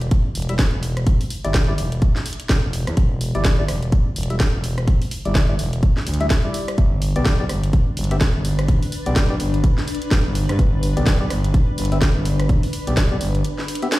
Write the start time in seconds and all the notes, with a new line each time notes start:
0.01 closed hi-hat
0.11 kick, closed hi-hat
0.35 E1, open hi-hat
0.42 closed hi-hat
0.49 G3 E4 E5, closed hi-hat
0.59 kick, snare, closed hi-hat
0.73 E1
0.83 open hi-hat
0.97 cross-stick, closed hi-hat
1.07 kick, closed hi-hat
1.21 open hi-hat
1.30 open hi-hat
1.44 G1 G3 E4 D5, closed hi-hat
1.54 kick, snare, closed hi-hat
1.68 G3 E4 D5
1.78 E1, open hi-hat
1.92 closed hi-hat
2.02 kick, closed hi-hat
2.16 snare
2.26 open hi-hat
2.33 closed hi-hat
2.40 closed hi-hat
2.49 E1, kick, snare, closed hi-hat
2.64 E1
2.73 open hi-hat
2.87 E2, cross-stick, closed hi-hat
2.97 E1, kick, closed hi-hat
3.21 open hi-hat
3.35 G1 G3 E4 D5, closed hi-hat
3.45 kick, snare, closed hi-hat
3.59 G3 E4 D5
3.68 E1, cross-stick, open hi-hat
3.83 closed hi-hat
3.92 kick, closed hi-hat
4.16 E1, open hi-hat
4.23 closed hi-hat
4.30 G3 E4 E5, closed hi-hat
4.40 kick, snare, closed hi-hat
4.54 E1
4.64 open hi-hat
4.78 cross-stick, closed hi-hat
4.88 kick, closed hi-hat
5.02 open hi-hat
5.11 open hi-hat
5.25 G1 G3 E4 D5, closed hi-hat
5.35 kick, snare, closed hi-hat
5.49 G3 E4 D5
5.59 E1, open hi-hat
5.73 closed hi-hat
5.83 kick, closed hi-hat
5.97 snare
6.07 D2, open hi-hat
6.14 closed hi-hat
6.21 G3 E4 E5, closed hi-hat
6.30 kick, snare, closed hi-hat
6.45 G3 E4 D5
6.54 open hi-hat
6.68 cross-stick, closed hi-hat
6.78 G1 D4, kick, closed hi-hat
7.02 open hi-hat
7.16 B1 B3 G4 D5, closed hi-hat
7.22 B4, kick, snare, closed hi-hat
7.40 B3 G4 D5
7.49 G1, cross-stick, open hi-hat
7.63 closed hi-hat
7.73 kick, closed hi-hat
7.97 G1, open hi-hat
8.04 closed hi-hat
8.11 B3 G4 E5, closed hi-hat
8.21 kick, snare, closed hi-hat
8.35 G1
8.45 open hi-hat
8.59 cross-stick, closed hi-hat
8.68 kick, closed hi-hat
8.83 open hi-hat
8.92 open hi-hat
9.06 B1 B3 G4 D5, closed hi-hat
9.16 kick, snare, closed hi-hat
9.30 B3 G4 D5
9.40 G1, open hi-hat
9.54 closed hi-hat
9.64 kick, closed hi-hat
9.78 snare
9.88 open hi-hat
9.95 closed hi-hat
10.02 closed hi-hat
10.11 G1, kick, snare, closed hi-hat
10.25 G1
10.35 open hi-hat
10.49 G2, cross-stick, closed hi-hat
10.59 G1, kick, closed hi-hat
10.83 open hi-hat
10.97 B1 B3 G4 D5, closed hi-hat
11.07 kick, snare, closed hi-hat
11.21 B3 G4 D5
11.30 G1, cross-stick, open hi-hat
11.44 closed hi-hat
11.54 kick, closed hi-hat
11.78 G1, open hi-hat
11.85 closed hi-hat
11.92 B3 G4 E5, closed hi-hat
12.02 kick, snare, closed hi-hat
12.16 G1
12.25 open hi-hat
12.40 cross-stick, closed hi-hat
12.49 kick, closed hi-hat
12.63 open hi-hat
12.73 open hi-hat
12.87 B1 B3 G4 D5, closed hi-hat
12.97 kick, snare, closed hi-hat
13.11 B3 G4 D5
13.21 G1, open hi-hat
13.35 closed hi-hat
13.44 closed hi-hat
13.58 snare
13.68 open hi-hat
13.75 closed hi-hat
13.82 B3 G4 E5, closed hi-hat
13.92 snare, closed hi-hat